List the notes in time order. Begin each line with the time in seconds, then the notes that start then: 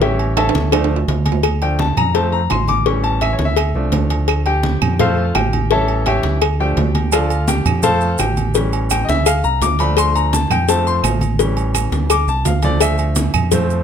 Already playing: A1
0.01 E3 G3 C#4 G4 C#5 E5 G5, cowbell, high conga
0.19 high conga, low agogo
0.37 A4 C#5 E5 A5, cowbell, high conga, high timbale, low agogo, claves
0.49 high timbale
0.55 D2, cowbell, high conga
0.72 F3 A3 D4, cowbell, high conga, high timbale, low agogo, claves
0.84 high timbale
0.91 high conga
0.96 low timbale
1.08 D2, cowbell, high conga, low timbale, low agogo
1.26 cowbell, high conga, low agogo
1.32 low timbale
1.43 cowbell, high conga, low agogo, claves
1.62 F3 A3 D4 G5, high conga, low agogo
1.79 A5, cowbell, high conga, low timbale
1.97 F2 A#5, low conga, low agogo, claves
2.14 F3 A3 C4 A5, cowbell, high conga, low agogo
2.32 A#5, high conga
2.50 A1 C6, cowbell, high conga, low timbale, low agogo, claves
2.68 D6, high conga, low agogo
2.86 E3 G3 C#4 C#6, cowbell, high conga
3.04 A5, high conga, low agogo
3.21 E5, cowbell, high conga, low timbale, low agogo, claves
3.33 C#5
3.39 D2, cowbell, high conga
3.45 E5
3.56 cowbell, high conga, low agogo, claves
3.74 C2 F3 A3 D4, high conga
3.92 D2, cowbell, high conga, low timbale, low agogo
4.10 cowbell, low agogo
4.28 cowbell, high conga, low agogo, claves
4.46 G4 G5, high conga, low agogo
4.63 cowbell, high conga, low timbale
4.82 F2, low conga, low agogo, claves
4.99 F3 A3 C4 F4 A4 C5 F5, cowbell, high conga, low conga, low agogo
5.18 high conga
5.35 A1 G4 G5, cowbell, high conga, low timbale, low agogo, claves
5.53 high conga, low agogo
5.71 E3 G3 C#4 A4 C#5 E5 A5, cowbell, high conga
5.88 high conga, low agogo
6.06 G4 C#5 E5 G5, cowbell, high conga, low timbale, low agogo, claves
6.23 D2, cowbell, high conga
6.42 cowbell, high conga, low agogo, claves
6.60 F3 A3 D4 G4 G5, high conga
6.77 D2, cowbell, high conga, low timbale, low agogo
6.95 cowbell, high conga, low agogo
7.12 F3 A3 D4 F4 A4 D5 F5, cowbell, high conga, low agogo, claves, maracas
7.30 high conga, low agogo, maracas
7.48 G4 G5, cowbell, high conga, low timbale, maracas
7.65 F2, low conga, low agogo, claves, maracas
7.82 F3 A3 C4 A4 C5 F5 A5, cowbell, high conga, low conga, low agogo, maracas
8.01 high conga, maracas
8.18 A1 G4 G5, cowbell, high conga, low timbale, low agogo, claves, maracas
8.37 high conga, low agogo, maracas
8.54 E3 G3 C#4, cowbell, high conga, maracas
8.73 high conga, low agogo, maracas
8.90 G5, cowbell, high conga, low timbale, low agogo, claves, maracas
9.05 D#5
9.09 D2 E5, cowbell, high conga, maracas
9.26 F5, cowbell, high conga, low agogo, claves, maracas
9.44 C2 A#5, high conga, maracas
9.61 D2 D6, cowbell, high conga, low timbale, low agogo, maracas
9.79 F3 A3 D4 B5, cowbell, low agogo, maracas
9.97 C6, cowbell, high conga, low agogo, claves, maracas
10.15 A#5, high conga, low agogo, maracas
10.33 A5, cowbell, high conga, low timbale, maracas
10.50 F2 G5, low conga, low agogo, claves, maracas
10.68 F3 A3 C4 A5, cowbell, high conga, low agogo, maracas
10.86 C6, high conga, maracas
11.03 A1, cowbell, high conga, low timbale, low agogo, claves, maracas
11.21 high conga, low agogo, maracas
11.39 E3 G3 C#4, cowbell, high conga, maracas
11.57 high conga, low agogo, maracas
11.75 cowbell, high conga, low timbale, low agogo, claves, maracas
11.92 D2, cowbell, high conga, maracas
12.10 D6, cowbell, high conga, low agogo, claves, maracas
12.27 C2 A5, high conga, maracas
12.45 D2 F5, cowbell, high conga, low timbale, low agogo, maracas
12.62 F3 A3 D4 D5, cowbell, high conga, low agogo, maracas
12.80 E5, cowbell, high conga, low agogo, claves, maracas
12.98 high conga, low agogo, maracas
13.16 cowbell, high conga, low timbale, maracas
13.34 F2, low conga, low agogo, claves, maracas
13.52 F3 A3 C4, cowbell, high conga, low conga, low agogo, maracas
13.69 high conga, maracas